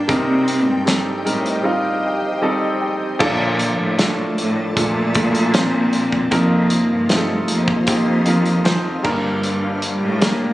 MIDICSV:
0, 0, Header, 1, 6, 480
1, 0, Start_track
1, 0, Key_signature, -2, "major"
1, 0, Tempo, 779221
1, 56, Time_signature, 4, 2, 24, 8
1, 6488, End_track
2, 0, Start_track
2, 0, Title_t, "Ambient pad"
2, 0, Program_c, 0, 92
2, 0, Note_on_c, 0, 79, 82
2, 51, Note_on_c, 0, 67, 74
2, 52, Note_on_c, 0, 75, 65
2, 54, Note_on_c, 0, 72, 65
2, 1953, Note_off_c, 0, 79, 0
2, 1954, Note_off_c, 0, 67, 0
2, 1955, Note_off_c, 0, 75, 0
2, 1956, Note_off_c, 0, 72, 0
2, 1981, Note_on_c, 0, 69, 67
2, 1982, Note_on_c, 0, 65, 74
2, 1982, Note_on_c, 0, 81, 83
2, 1985, Note_on_c, 0, 74, 68
2, 3880, Note_off_c, 0, 69, 0
2, 3880, Note_off_c, 0, 81, 0
2, 3881, Note_off_c, 0, 74, 0
2, 3901, Note_on_c, 0, 72, 68
2, 3901, Note_on_c, 0, 77, 82
2, 3902, Note_on_c, 0, 75, 69
2, 5554, Note_off_c, 0, 65, 0
2, 5562, Note_off_c, 0, 72, 0
2, 5562, Note_off_c, 0, 75, 0
2, 5569, Note_on_c, 0, 74, 67
2, 5575, Note_on_c, 0, 67, 73
2, 5575, Note_on_c, 0, 70, 66
2, 6488, Note_off_c, 0, 67, 0
2, 6488, Note_off_c, 0, 70, 0
2, 6488, Note_off_c, 0, 74, 0
2, 6488, Note_off_c, 0, 77, 0
2, 6488, End_track
3, 0, Start_track
3, 0, Title_t, "Grand piano"
3, 0, Program_c, 1, 0
3, 0, Control_c, 1, 64, 127
3, 0, Note_on_c, 1, 55, 65
3, 0, Note_on_c, 1, 58, 60
3, 0, Note_on_c, 1, 62, 60
3, 0, Note_on_c, 1, 69, 67
3, 0, Note_on_c, 1, 70, 71
3, 0, Note_on_c, 1, 72, 62
3, 47, Note_off_c, 1, 55, 0
3, 47, Note_on_c, 1, 55, 83
3, 52, Note_on_c, 1, 60, 74
3, 53, Note_on_c, 1, 43, 57
3, 55, Note_on_c, 1, 63, 76
3, 56, Note_off_c, 1, 70, 0
3, 56, Note_on_c, 1, 70, 90
3, 64, Control_c, 1, 64, 0
3, 67, Note_off_c, 1, 69, 0
3, 67, Note_off_c, 1, 72, 0
3, 69, Note_off_c, 1, 58, 0
3, 70, Note_off_c, 1, 62, 0
3, 186, Control_c, 1, 64, 127
3, 507, Note_off_c, 1, 55, 0
3, 510, Note_off_c, 1, 60, 0
3, 512, Note_off_c, 1, 63, 0
3, 512, Note_off_c, 1, 70, 0
3, 529, Note_on_c, 1, 55, 62
3, 533, Note_on_c, 1, 60, 63
3, 537, Note_on_c, 1, 63, 59
3, 540, Note_on_c, 1, 69, 70
3, 750, Note_off_c, 1, 43, 0
3, 760, Note_off_c, 1, 55, 0
3, 762, Note_off_c, 1, 60, 0
3, 764, Note_off_c, 1, 63, 0
3, 766, Note_off_c, 1, 69, 0
3, 769, Note_on_c, 1, 55, 69
3, 771, Note_on_c, 1, 60, 64
3, 775, Note_on_c, 1, 63, 61
3, 777, Note_on_c, 1, 70, 80
3, 997, Note_off_c, 1, 55, 0
3, 998, Note_off_c, 1, 60, 0
3, 1002, Note_off_c, 1, 63, 0
3, 1004, Note_off_c, 1, 70, 0
3, 1006, Note_on_c, 1, 55, 76
3, 1007, Note_on_c, 1, 60, 66
3, 1011, Note_on_c, 1, 63, 72
3, 1016, Note_on_c, 1, 65, 90
3, 1467, Note_off_c, 1, 55, 0
3, 1468, Note_off_c, 1, 60, 0
3, 1470, Note_off_c, 1, 63, 0
3, 1472, Note_off_c, 1, 65, 0
3, 1488, Note_on_c, 1, 55, 76
3, 1492, Note_on_c, 1, 60, 69
3, 1493, Note_on_c, 1, 75, 62
3, 1496, Note_on_c, 1, 63, 69
3, 1497, Note_on_c, 1, 69, 81
3, 1718, Note_off_c, 1, 75, 0
3, 1734, Note_on_c, 1, 79, 60
3, 1948, Note_off_c, 1, 55, 0
3, 1950, Note_off_c, 1, 60, 0
3, 1952, Note_off_c, 1, 63, 0
3, 1953, Note_off_c, 1, 69, 0
3, 1958, Note_off_c, 1, 79, 0
3, 1966, Note_on_c, 1, 53, 104
3, 1972, Note_on_c, 1, 58, 95
3, 1973, Note_on_c, 1, 50, 66
3, 1974, Note_on_c, 1, 62, 92
3, 1976, Note_on_c, 1, 69, 113
3, 1985, Control_c, 1, 64, 0
3, 2094, Control_c, 1, 64, 127
3, 2427, Note_off_c, 1, 53, 0
3, 2430, Note_off_c, 1, 58, 0
3, 2431, Note_off_c, 1, 62, 0
3, 2432, Note_off_c, 1, 69, 0
3, 2451, Note_on_c, 1, 53, 66
3, 2457, Note_on_c, 1, 62, 62
3, 2461, Note_on_c, 1, 69, 75
3, 2670, Note_off_c, 1, 50, 0
3, 2909, Note_off_c, 1, 53, 0
3, 2912, Note_off_c, 1, 62, 0
3, 2914, Note_off_c, 1, 69, 0
3, 2929, Note_on_c, 1, 53, 66
3, 2932, Note_on_c, 1, 46, 61
3, 2936, Note_on_c, 1, 62, 58
3, 2940, Note_on_c, 1, 69, 71
3, 3158, Note_off_c, 1, 53, 0
3, 3161, Note_off_c, 1, 46, 0
3, 3164, Note_off_c, 1, 62, 0
3, 3166, Note_off_c, 1, 69, 0
3, 3167, Note_on_c, 1, 53, 62
3, 3171, Note_on_c, 1, 46, 56
3, 3174, Note_on_c, 1, 62, 58
3, 3176, Note_on_c, 1, 69, 70
3, 3398, Note_off_c, 1, 53, 0
3, 3401, Note_off_c, 1, 46, 0
3, 3403, Note_off_c, 1, 62, 0
3, 3404, Note_off_c, 1, 69, 0
3, 3407, Note_on_c, 1, 53, 66
3, 3409, Note_on_c, 1, 58, 58
3, 3413, Note_on_c, 1, 62, 60
3, 3417, Note_on_c, 1, 72, 74
3, 3868, Note_off_c, 1, 53, 0
3, 3869, Note_off_c, 1, 58, 0
3, 3871, Note_off_c, 1, 62, 0
3, 3872, Note_off_c, 1, 72, 0
3, 3886, Note_on_c, 1, 60, 81
3, 3887, Note_on_c, 1, 53, 83
3, 3890, Note_on_c, 1, 48, 59
3, 3892, Note_on_c, 1, 63, 79
3, 3895, Note_on_c, 1, 70, 99
3, 3903, Control_c, 1, 64, 0
3, 4026, Control_c, 1, 64, 127
3, 4347, Note_off_c, 1, 53, 0
3, 4347, Note_off_c, 1, 60, 0
3, 4350, Note_off_c, 1, 63, 0
3, 4351, Note_off_c, 1, 70, 0
3, 4368, Note_on_c, 1, 53, 67
3, 4371, Note_on_c, 1, 60, 63
3, 4372, Note_on_c, 1, 63, 64
3, 4379, Note_on_c, 1, 67, 61
3, 4417, Note_off_c, 1, 67, 0
3, 4418, Note_on_c, 1, 69, 76
3, 4588, Note_off_c, 1, 48, 0
3, 4828, Note_off_c, 1, 53, 0
3, 4829, Note_off_c, 1, 60, 0
3, 4830, Note_off_c, 1, 63, 0
3, 4844, Note_on_c, 1, 53, 65
3, 4850, Note_on_c, 1, 60, 65
3, 4852, Note_on_c, 1, 63, 65
3, 4853, Note_off_c, 1, 69, 0
3, 4857, Note_on_c, 1, 67, 78
3, 5076, Note_off_c, 1, 53, 0
3, 5079, Note_off_c, 1, 60, 0
3, 5082, Note_off_c, 1, 63, 0
3, 5084, Note_off_c, 1, 67, 0
3, 5085, Note_on_c, 1, 53, 65
3, 5088, Note_on_c, 1, 60, 61
3, 5094, Note_on_c, 1, 63, 59
3, 5098, Note_on_c, 1, 70, 73
3, 5316, Note_off_c, 1, 53, 0
3, 5319, Note_off_c, 1, 60, 0
3, 5323, Note_off_c, 1, 63, 0
3, 5325, Note_off_c, 1, 70, 0
3, 5325, Note_on_c, 1, 53, 83
3, 5329, Note_on_c, 1, 60, 76
3, 5333, Note_on_c, 1, 63, 74
3, 5336, Note_on_c, 1, 72, 87
3, 5562, Note_on_c, 1, 55, 82
3, 5567, Note_on_c, 1, 50, 69
3, 5567, Note_on_c, 1, 58, 75
3, 5569, Note_on_c, 1, 43, 75
3, 5570, Note_off_c, 1, 53, 0
3, 5570, Note_on_c, 1, 62, 78
3, 5572, Note_off_c, 1, 60, 0
3, 5572, Note_on_c, 1, 70, 95
3, 5575, Note_off_c, 1, 63, 0
3, 5576, Note_off_c, 1, 72, 0
3, 5584, Control_c, 1, 64, 0
3, 5707, Control_c, 1, 64, 127
3, 6253, Note_off_c, 1, 55, 0
3, 6255, Note_off_c, 1, 58, 0
3, 6257, Note_off_c, 1, 62, 0
3, 6258, Note_off_c, 1, 70, 0
3, 6267, Note_off_c, 1, 50, 0
3, 6268, Note_off_c, 1, 43, 0
3, 6287, Note_on_c, 1, 55, 70
3, 6294, Note_on_c, 1, 62, 65
3, 6298, Note_on_c, 1, 70, 77
3, 6488, Note_off_c, 1, 55, 0
3, 6488, Note_off_c, 1, 62, 0
3, 6488, Note_off_c, 1, 70, 0
3, 6488, End_track
4, 0, Start_track
4, 0, Title_t, "Cello"
4, 0, Program_c, 2, 42
4, 0, Note_on_c, 2, 62, 92
4, 72, Note_on_c, 2, 60, 85
4, 81, Note_off_c, 2, 62, 0
4, 784, Note_off_c, 2, 60, 0
4, 2224, Note_on_c, 2, 53, 72
4, 2443, Note_off_c, 2, 53, 0
4, 2464, Note_on_c, 2, 57, 88
4, 2915, Note_off_c, 2, 57, 0
4, 2940, Note_on_c, 2, 57, 98
4, 3417, Note_on_c, 2, 60, 100
4, 3426, Note_off_c, 2, 57, 0
4, 3899, Note_on_c, 2, 58, 99
4, 3909, Note_off_c, 2, 60, 0
4, 4382, Note_on_c, 2, 57, 90
4, 4391, Note_off_c, 2, 58, 0
4, 4629, Note_on_c, 2, 58, 87
4, 4639, Note_off_c, 2, 57, 0
4, 5343, Note_off_c, 2, 58, 0
4, 6067, Note_on_c, 2, 55, 75
4, 6301, Note_on_c, 2, 58, 90
4, 6310, Note_off_c, 2, 55, 0
4, 6488, Note_off_c, 2, 58, 0
4, 6488, End_track
5, 0, Start_track
5, 0, Title_t, "Cello section"
5, 0, Program_c, 3, 48
5, 58, Note_on_c, 3, 48, 96
5, 414, Note_on_c, 3, 43, 84
5, 417, Note_off_c, 3, 48, 0
5, 638, Note_off_c, 3, 43, 0
5, 779, Note_on_c, 3, 45, 76
5, 1001, Note_off_c, 3, 45, 0
5, 1975, Note_on_c, 3, 46, 93
5, 2311, Note_off_c, 3, 46, 0
5, 2342, Note_on_c, 3, 45, 81
5, 2674, Note_off_c, 3, 45, 0
5, 2698, Note_on_c, 3, 45, 80
5, 2920, Note_off_c, 3, 45, 0
5, 2939, Note_on_c, 3, 46, 99
5, 3873, Note_off_c, 3, 46, 0
5, 3894, Note_on_c, 3, 41, 106
5, 4230, Note_off_c, 3, 41, 0
5, 4256, Note_on_c, 3, 43, 83
5, 4591, Note_off_c, 3, 43, 0
5, 4619, Note_on_c, 3, 41, 87
5, 4840, Note_off_c, 3, 41, 0
5, 4851, Note_on_c, 3, 41, 102
5, 5549, Note_off_c, 3, 41, 0
5, 5573, Note_on_c, 3, 43, 100
5, 6150, Note_off_c, 3, 43, 0
5, 6174, Note_on_c, 3, 45, 89
5, 6488, Note_off_c, 3, 45, 0
5, 6488, End_track
6, 0, Start_track
6, 0, Title_t, "Drums"
6, 54, Note_on_c, 9, 42, 64
6, 55, Note_on_c, 9, 36, 91
6, 116, Note_off_c, 9, 36, 0
6, 116, Note_off_c, 9, 42, 0
6, 295, Note_on_c, 9, 42, 65
6, 356, Note_off_c, 9, 42, 0
6, 537, Note_on_c, 9, 42, 77
6, 541, Note_on_c, 9, 38, 92
6, 599, Note_off_c, 9, 42, 0
6, 603, Note_off_c, 9, 38, 0
6, 780, Note_on_c, 9, 42, 61
6, 842, Note_off_c, 9, 42, 0
6, 898, Note_on_c, 9, 42, 45
6, 959, Note_off_c, 9, 42, 0
6, 1974, Note_on_c, 9, 36, 97
6, 1974, Note_on_c, 9, 49, 85
6, 2036, Note_off_c, 9, 36, 0
6, 2036, Note_off_c, 9, 49, 0
6, 2214, Note_on_c, 9, 42, 75
6, 2276, Note_off_c, 9, 42, 0
6, 2456, Note_on_c, 9, 42, 81
6, 2460, Note_on_c, 9, 38, 101
6, 2517, Note_off_c, 9, 42, 0
6, 2521, Note_off_c, 9, 38, 0
6, 2699, Note_on_c, 9, 42, 69
6, 2761, Note_off_c, 9, 42, 0
6, 2937, Note_on_c, 9, 36, 81
6, 2938, Note_on_c, 9, 42, 82
6, 2998, Note_off_c, 9, 36, 0
6, 2999, Note_off_c, 9, 42, 0
6, 3170, Note_on_c, 9, 42, 57
6, 3175, Note_on_c, 9, 36, 90
6, 3231, Note_off_c, 9, 42, 0
6, 3237, Note_off_c, 9, 36, 0
6, 3294, Note_on_c, 9, 42, 44
6, 3355, Note_off_c, 9, 42, 0
6, 3411, Note_on_c, 9, 42, 85
6, 3417, Note_on_c, 9, 38, 99
6, 3473, Note_off_c, 9, 42, 0
6, 3478, Note_off_c, 9, 38, 0
6, 3652, Note_on_c, 9, 42, 75
6, 3714, Note_off_c, 9, 42, 0
6, 3773, Note_on_c, 9, 36, 85
6, 3834, Note_off_c, 9, 36, 0
6, 3890, Note_on_c, 9, 42, 74
6, 3892, Note_on_c, 9, 36, 99
6, 3951, Note_off_c, 9, 42, 0
6, 3953, Note_off_c, 9, 36, 0
6, 4128, Note_on_c, 9, 42, 74
6, 4190, Note_off_c, 9, 42, 0
6, 4370, Note_on_c, 9, 42, 81
6, 4373, Note_on_c, 9, 38, 98
6, 4431, Note_off_c, 9, 42, 0
6, 4435, Note_off_c, 9, 38, 0
6, 4609, Note_on_c, 9, 42, 69
6, 4670, Note_off_c, 9, 42, 0
6, 4729, Note_on_c, 9, 36, 88
6, 4791, Note_off_c, 9, 36, 0
6, 4847, Note_on_c, 9, 42, 82
6, 4852, Note_on_c, 9, 36, 86
6, 4908, Note_off_c, 9, 42, 0
6, 4914, Note_off_c, 9, 36, 0
6, 5086, Note_on_c, 9, 42, 57
6, 5148, Note_off_c, 9, 42, 0
6, 5208, Note_on_c, 9, 42, 44
6, 5270, Note_off_c, 9, 42, 0
6, 5330, Note_on_c, 9, 42, 79
6, 5335, Note_on_c, 9, 38, 106
6, 5391, Note_off_c, 9, 42, 0
6, 5397, Note_off_c, 9, 38, 0
6, 5572, Note_on_c, 9, 36, 90
6, 5572, Note_on_c, 9, 57, 67
6, 5633, Note_off_c, 9, 57, 0
6, 5634, Note_off_c, 9, 36, 0
6, 5812, Note_on_c, 9, 42, 70
6, 5873, Note_off_c, 9, 42, 0
6, 6050, Note_on_c, 9, 42, 72
6, 6112, Note_off_c, 9, 42, 0
6, 6293, Note_on_c, 9, 42, 86
6, 6297, Note_on_c, 9, 38, 97
6, 6354, Note_off_c, 9, 42, 0
6, 6358, Note_off_c, 9, 38, 0
6, 6488, End_track
0, 0, End_of_file